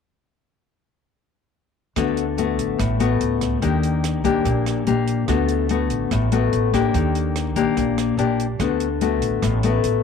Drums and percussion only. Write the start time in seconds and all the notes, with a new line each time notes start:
1.96 kick, cross-stick, closed hi-hat
2.17 closed hi-hat
2.38 closed hi-hat
2.59 closed hi-hat
2.79 kick, cross-stick, closed hi-hat
3.00 closed hi-hat
3.21 closed hi-hat
3.41 kick, cross-stick, closed hi-hat
3.62 kick, closed hi-hat
3.83 closed hi-hat
4.04 cross-stick, closed hi-hat
4.25 kick, closed hi-hat
4.45 kick, closed hi-hat
4.66 cross-stick, closed hi-hat
4.87 closed hi-hat
5.08 closed hi-hat
5.28 kick, cross-stick, closed hi-hat
5.49 closed hi-hat
5.69 closed hi-hat
5.90 closed hi-hat
6.11 kick, cross-stick, closed hi-hat
6.32 closed hi-hat
6.53 closed hi-hat
6.74 kick, cross-stick, closed hi-hat
6.94 kick, closed hi-hat
7.15 closed hi-hat
7.36 cross-stick, closed hi-hat
7.56 kick, closed hi-hat
7.77 kick, closed hi-hat
7.98 cross-stick, closed hi-hat
8.19 closed hi-hat
8.40 closed hi-hat
8.60 kick, cross-stick, closed hi-hat
8.80 closed hi-hat
9.01 closed hi-hat
9.22 closed hi-hat
9.42 kick, cross-stick, closed hi-hat
9.63 closed hi-hat
9.84 closed hi-hat